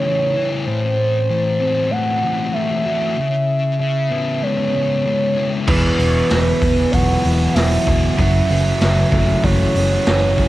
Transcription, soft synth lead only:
0.05 0.48 C#5 medium
0.65 1.92 C5 loud
1.91 2.55 F#5 loud
2.53 3.17 E5 loud
3.17 3.76 E5 loud
3.80 4.44 E5 loud
4.43 5.06 C#5 loud
5.06 5.50 C#5 loud
5.68 6.93 B4 loud
6.92 7.56 F#5 loud
7.54 8.18 E5 loud
8.19 8.77 E5 loud
8.81 9.45 E5 loud
9.43 10.06 C#5 loud
10.07 10.48 C#5 medium

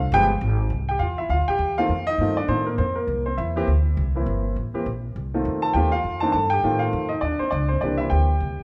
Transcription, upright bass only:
0.00 0.11 C2 loud
0.12 0.41 G1 loud
0.41 0.69 G#1 medium
0.70 0.99 C2 medium
0.99 1.29 E2 medium
1.29 1.40 D2 medium
1.39 1.48 C2 soft
1.49 1.58 A#1 medium
1.59 1.88 E2 medium
1.89 2.18 F2 medium
2.18 2.48 G2 medium
2.48 2.77 A2 medium
2.78 3.07 F2 medium
3.07 3.37 C2 medium
3.38 3.67 E2 medium
3.67 3.96 D2 medium
3.97 4.26 C2 medium
4.26 4.55 G1 medium
4.56 4.73 A1 medium
4.74 muted upright bass stroke soft
4.86 5.15 A#1 medium
5.16 5.44 C2 medium
5.45 5.74 F2 medium
5.74 6.03 D#2 medium
6.04 6.33 F2 medium
6.34 6.63 G2 medium
6.63 6.92 A2 medium
6.93 7.21 F2 medium
7.22 7.39 D#2 medium
7.40 muted upright bass stroke soft
7.52 7.81 C#2 medium
7.82 8.11 C2 medium
8.11 8.40 D2 medium
8.40 8.57 C2 medium
8.59 muted upright bass stroke soft

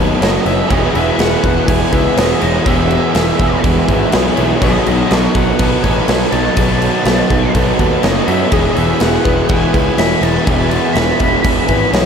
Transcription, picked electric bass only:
0.00 0.13 D#2 medium
0.21 0.37 F#1 medium
0.45 0.61 F#1 medium
0.71 0.86 E1 medium
0.95 1.10 E1 medium
1.19 1.35 E1 medium
1.44 1.59 E1 medium
1.68 1.84 E1 medium
1.93 2.08 C#2 medium
2.17 2.33 E1 medium
2.42 2.58 E1 loud
2.66 2.97 E1 loud
3.15 3.31 E1 medium
3.39 3.55 E1 medium
3.64 3.79 E1 loud
3.89 4.04 G#1 medium
4.13 4.29 B1 medium
4.38 4.53 B1 loud
4.62 4.77 B1 loud
4.87 5.02 B1 loud
5.11 5.26 B1 loud
5.35 5.51 B1 medium
5.60 5.75 B1 loud
5.84 5.99 A1 medium
6.08 6.24 B1 medium
6.33 6.48 B1 loud
6.57 6.88 B1 loud
7.06 7.21 B1 loud
7.30 7.46 B1 medium
7.55 7.70 B1 loud
7.79 7.95 D#2 medium
8.04 8.19 F#1 medium
8.28 8.43 F#2 loud
8.52 8.68 E1 medium
8.76 8.92 E1 medium
9.01 9.16 E1 loud
9.25 9.41 E1 medium
9.50 9.65 E1 loud
9.74 9.89 C#2 medium
9.98 10.13 E1 medium
10.21 10.37 E1 loud
10.47 10.78 E1 loud
10.95 11.11 E1 medium
11.20 11.36 E1 medium
11.44 11.60 E1 loud
11.69 11.84 G#1 medium
11.92 12.06 B1 medium

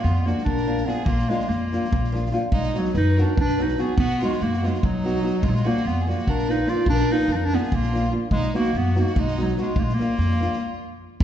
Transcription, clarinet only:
0.04 0.27 B3 medium
0.26 0.44 A#3 medium
0.45 0.87 D4 loud
0.86 1.07 B3 medium
1.05 1.30 A#3 loud
1.29 1.50 G#3 loud
1.48 2.32 A#3 medium
2.53 2.80 G#3 loud
2.78 2.96 F#3 medium
2.97 3.23 D#4 loud
3.21 3.39 D4 medium
3.41 3.63 D4 loud
3.62 3.84 D#4 medium
3.82 3.99 B3 loud
4.00 4.20 B3 loud
4.24 4.44 G#3 loud
4.43 4.68 A#3 loud
4.66 4.86 G#3 medium
4.85 5.46 F#3 loud
5.44 5.51 G#3 medium
5.49 5.57 F#3 medium
5.55 5.69 G#3 loud
5.67 5.89 A#3 loud
5.87 6.01 B3 loud
6.01 6.11 B3 medium
6.09 6.31 A#3 medium
6.29 6.52 D4 loud
6.51 6.71 D#4 loud
6.70 6.88 F4 loud
6.89 7.13 D4 loud
7.12 7.34 D#4 loud
7.32 7.37 D4 loud
7.32 7.46 D#4 medium
7.45 7.56 D4 loud
7.55 7.76 B3 loud
7.75 8.09 A#3 loud
8.32 8.53 G#3 loud
8.55 8.79 A#3 loud
8.77 8.98 B3 loud
9.00 9.21 A#3 medium
9.20 9.44 G#3 loud
9.43 9.59 F#3 medium
9.61 9.81 G#3 medium
9.79 9.96 G#3 medium
9.79 9.85 A#3 loud
9.94 10.83 A#3 loud

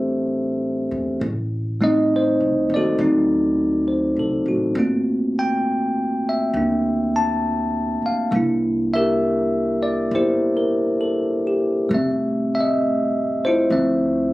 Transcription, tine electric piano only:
0.00 1.20 G3 soft
0.00 1.20 A3 soft
0.00 1.22 C4 soft
0.00 1.21 D4 soft
0.00 0.90 G4 soft
0.00 0.90 A4 soft
0.00 0.89 C5 medium
0.00 1.22 E5 medium
1.81 2.99 G3 soft
1.81 2.99 A3 soft
1.81 3.00 C4 soft
1.81 3.00 D#4 soft
1.81 2.10 D#5 medium
2.16 2.75 C5 medium
2.74 4.47 F#4 soft
2.74 4.18 A4 soft
2.74 4.45 D5 medium
3.00 4.77 F#3 soft
3.00 4.76 A3 soft
3.00 4.77 C4 soft
3.00 4.78 D#4 soft
3.88 4.43 C5 soft
4.19 4.64 A4 soft
4.48 4.94 F#4 soft
4.77 8.32 A3 soft
4.77 6.53 A#3 soft
4.77 8.33 C4 soft
4.77 8.33 F4 soft
5.39 5.93 G5 medium
6.29 6.54 E5 medium
6.54 8.31 A#3 soft
6.54 8.33 D4 soft
7.16 7.70 A5 medium
8.06 8.32 F5 medium
8.31 11.88 G3 soft
8.31 11.91 A#3 soft
8.31 11.93 D4 soft
8.36 10.14 E4 soft
8.94 10.14 G4 soft
8.94 10.56 A#4 medium
8.94 9.85 E5 medium
9.83 10.10 D5 medium
10.15 11.90 E4 soft
10.15 11.46 G4 soft
10.15 11.60 C5 medium
10.57 11.20 A#4 soft
11.01 11.72 A4 soft
11.47 12.10 G4 soft
11.89 13.70 G3 soft
11.89 13.70 A3 soft
11.93 13.71 C4 soft
11.93 12.54 E5 soft
12.55 13.09 E5 medium
12.61 12.63 D#5 medium
13.45 14.33 E4 soft
13.45 14.33 F4 soft
13.45 14.33 C5 medium
13.71 14.33 F3 soft
13.71 14.33 A3 soft
13.71 14.33 C4 soft
13.71 14.33 E5 soft

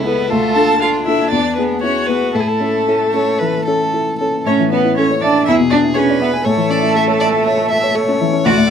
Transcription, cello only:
0.05 0.30 B3 medium
0.30 0.57 A3 medium
0.56 0.80 A4 medium
0.81 1.06 F4 medium
1.07 1.32 E4 medium
1.34 1.58 D4 soft
1.59 1.83 B3 medium
1.84 1.92 C#4 soft
2.09 2.37 B3 soft
2.35 3.93 A3 soft
4.45 4.70 C#4 medium
4.72 4.96 B3 medium
4.96 5.04 C#4 medium
5.22 5.46 D4 medium
5.47 5.55 E4 medium
5.72 5.80 D4 medium
5.96 6.21 C#4 medium
6.21 6.29 B3 medium
6.46 8.18 A3 medium
8.46 8.54 F#4 medium

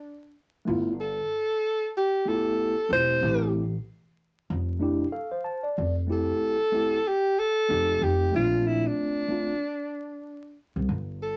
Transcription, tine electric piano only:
0.65 0.90 A3 medium
0.65 0.91 B3 medium
0.65 0.92 E4 medium
0.65 0.92 F4 medium
2.25 2.73 A3 medium
2.25 2.74 B3 medium
2.25 2.74 E4 medium
2.25 2.35 F4 medium
2.35 2.78 G4 medium
2.89 3.20 A3 medium
2.89 3.21 C4 medium
2.89 3.22 E4 medium
2.89 2.99 F4 medium
2.99 3.23 G4 medium
3.21 3.61 A3 medium
3.21 3.62 C4 medium
3.21 3.62 E4 medium
3.21 3.63 G4 medium
4.79 5.05 A3 medium
4.79 5.05 D4 medium
4.79 5.06 E4 medium
4.79 5.06 G4 medium
5.12 5.31 A4 medium
5.12 5.43 F5 medium
5.31 5.62 C5 medium
5.44 5.75 A5 medium
5.63 5.94 D5 medium
6.07 6.55 A3 medium
6.07 6.56 C4 medium
6.07 6.56 E4 medium
6.07 6.57 G4 medium
6.72 6.97 A3 medium
6.72 6.97 C4 medium
6.72 6.98 E4 medium
6.72 6.99 G4 medium
7.69 8.30 A3 medium
7.69 8.31 C4 medium
7.69 8.34 D#4 medium
7.69 8.35 G4 medium
8.31 9.23 A3 medium
8.31 9.23 C4 medium
8.31 9.24 D4 medium
8.31 9.25 F4 medium
9.28 9.53 A3 medium
9.28 9.53 C4 soft
9.28 9.54 D4 medium
9.28 9.54 F4 medium

